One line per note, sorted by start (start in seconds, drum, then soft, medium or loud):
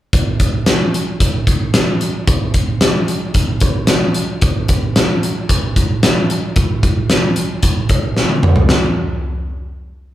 0.13 kick loud
0.13 closed hi-hat medium
0.40 kick medium
0.40 closed hi-hat medium
0.66 snare medium
0.66 closed hi-hat medium
0.94 closed hi-hat medium
1.20 kick medium
1.20 closed hi-hat medium
1.47 kick medium
1.47 closed hi-hat medium
1.74 snare loud
1.74 closed hi-hat medium
2.01 closed hi-hat medium
2.27 kick loud
2.27 closed hi-hat medium
2.54 kick medium
2.54 closed hi-hat medium
2.81 snare medium
2.81 closed hi-hat medium
3.08 closed hi-hat medium
3.34 kick medium
3.34 closed hi-hat medium
3.60 kick medium
3.60 closed hi-hat medium
3.87 snare medium
3.87 closed hi-hat medium
4.14 closed hi-hat medium
4.41 kick loud
4.41 closed hi-hat medium
4.68 kick medium
4.68 closed hi-hat medium
4.96 snare loud
4.96 closed hi-hat medium
5.23 closed hi-hat medium
5.49 kick medium
5.49 closed hi-hat medium
5.76 kick medium
5.76 closed hi-hat medium
6.03 snare loud
6.03 closed hi-hat medium
6.30 closed hi-hat medium
6.56 kick medium
6.56 closed hi-hat medium
6.83 kick medium
6.83 closed hi-hat medium
7.10 snare medium
7.10 closed hi-hat medium
7.36 closed hi-hat medium
7.63 kick medium
7.63 closed hi-hat medium
7.89 kick medium
7.89 closed hi-hat medium
8.17 snare medium
8.29 high tom medium
8.43 mid tom medium
8.56 floor tom medium
8.69 snare medium